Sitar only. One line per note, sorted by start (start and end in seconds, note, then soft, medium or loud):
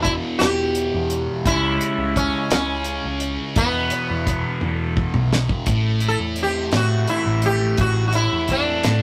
0.02 0.12 E4 medium
0.39 1.15 G4 loud
1.47 2.16 E4 medium
2.17 2.49 C#4 medium
2.52 3.18 C#4 medium
3.57 4.70 B3 loud
4.70 5.29 A3 loud
6.08 6.17 A4 medium
6.43 6.76 G4 medium
6.76 7.09 F#4 loud
7.09 7.45 E4 medium
7.46 7.80 G4 loud
7.81 8.06 F#4 medium
8.08 8.15 F#4 medium
8.15 8.51 E4 medium
8.52 9.02 D4 medium